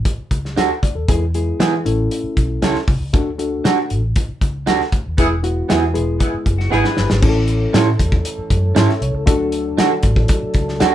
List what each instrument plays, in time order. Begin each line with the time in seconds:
0.05 kick, closed hi-hat
0.18 muted fingered electric bass stroke
0.31 fingered electric bass C#2, kick, closed hi-hat
0.45 snare
0.56 fingered electric bass D2, clean electric guitar D4 F#4 A4, snare, closed hi-hat
0.70 reed electric piano F#5
0.83 fingered electric bass D2, reed electric piano D5, kick, closed hi-hat
0.95 fingered electric bass D#2, reed electric piano A4
1.08 fingered electric bass E2, reed electric piano G#3 B3 E4 G#4, kick, closed hi-hat
1.34 reed electric piano G#3 B3 E4 G#4, closed hi-hat
1.59 fingered electric bass E3, clean electric guitar B3 E4 G#4, snare, closed hi-hat
1.85 fingered electric bass A1, reed electric piano A3 C#4 E4 A4, closed hi-hat
2.11 closed hi-hat
2.23 muted fingered electric bass stroke
2.37 fingered electric bass B1, kick, closed hi-hat
2.62 fingered electric bass C#2, clean electric guitar C#4 E4 A4, snare, closed hi-hat
2.75 snare
2.88 fingered electric bass C2, kick, open hi-hat
3.00 fingered electric bass C#2
3.13 fingered electric bass D2, reed electric piano A3 D4 F#4 A4, kick, closed hi-hat
3.38 reed electric piano A3 D4 F#4 A4, closed hi-hat
3.64 fingered electric bass D3, clean electric guitar D4 F#4 A4, snare, closed hi-hat
3.90 fingered electric bass A1, closed hi-hat
4.16 kick, closed hi-hat
4.29 muted fingered electric bass stroke
4.41 fingered electric bass C#2, kick, closed hi-hat
4.66 fingered electric bass D2, clean electric guitar D4 F#4 A4, snare, closed hi-hat
4.81 snare
4.92 fingered electric bass D2, kick, closed hi-hat
5.08 fingered electric bass D#2
5.18 fingered electric bass E1, reed electric piano G#3 B3 E4 G#4, horn section B3 E4 G#4, kick, closed hi-hat
5.43 reed electric piano G#3 B3 E4 F#4, closed hi-hat
5.68 fingered electric bass E2, horn section B3 E4 G#4, clean electric guitar B3 E4 G#4, snare, closed hi-hat
5.94 fingered electric bass E1, reed electric piano G#3 B3 E4 G#4, closed hi-hat
6.19 horn section B3 E4 G#4, kick, closed hi-hat
6.34 muted fingered electric bass stroke
6.46 fingered electric bass F#1, kick, closed hi-hat
6.59 clean electric guitar F#4, snare
6.70 fingered electric bass G#1, clean electric guitar B3 E4 G#4, horn section E4 G#4 B4, snare
6.84 clean electric guitar D4 B4, snare
6.97 fingered electric bass G1, snare
7.10 fingered electric bass G#1, snare
7.21 fingered electric bass A1, tonewheel organ E3 A3 C#4 A4, reed electric piano A3 C#4 E4 G#4, kick, crash
7.29 reed electric piano A4
7.48 closed hi-hat
7.73 fingered electric bass A2, clean electric guitar C#4 E4 A4, snare, closed hi-hat
7.99 fingered electric bass E2, kick, closed hi-hat
8.12 kick
8.25 closed hi-hat
8.38 muted fingered electric bass stroke
8.50 fingered electric bass F#2, kick, closed hi-hat
8.75 fingered electric bass G#2, clean electric guitar C#4 E4 A4, reed electric piano C#5, snare, closed hi-hat
8.89 reed electric piano E5, snare
9.01 fingered electric bass C2, reed electric piano C#5, closed hi-hat
9.14 fingered electric bass C#2, reed electric piano A4
9.26 fingered electric bass D2, tonewheel organ F#3 A3 D4 A4, reed electric piano A3 D4 F#4 A4, kick, closed hi-hat
9.52 closed hi-hat
9.77 fingered electric bass D3, clean electric guitar D4 F#4 A4, snare, closed hi-hat
10.03 fingered electric bass A1, kick, closed hi-hat
10.16 kick
10.28 kick, closed hi-hat
10.43 muted fingered electric bass stroke
10.54 fingered electric bass C#2, kick, closed hi-hat
10.68 snare
10.80 fingered electric bass D2, clean electric guitar D4 F#4 A4, reed electric piano G#5, snare, closed hi-hat